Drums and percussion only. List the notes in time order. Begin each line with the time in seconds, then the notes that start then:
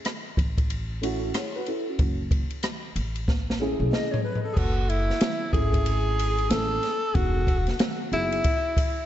0.05 cross-stick, hi-hat pedal, ride
0.37 kick, ride
0.58 kick, ride
0.70 ride
1.03 ride
1.34 cross-stick, hi-hat pedal, ride
1.66 ride
1.99 kick, ride
2.31 kick, ride
2.50 ride
2.63 cross-stick, hi-hat pedal, ride
2.96 ride
3.15 ride
3.28 kick, snare
3.50 snare
3.93 snare
4.14 floor tom
4.35 floor tom
4.57 kick, crash
4.89 ride
5.10 snare
5.21 snare, hi-hat pedal, ride
5.53 kick, ride
5.73 kick, ride
5.86 ride
6.19 ride
6.38 ride
6.50 snare, hi-hat pedal, ride
6.83 snare, ride
7.15 kick, ride
7.47 kick, ride
7.67 snare, ride
7.79 snare, hi-hat pedal, ride
8.13 ride
8.32 ride
8.44 kick, ride
8.77 kick, ride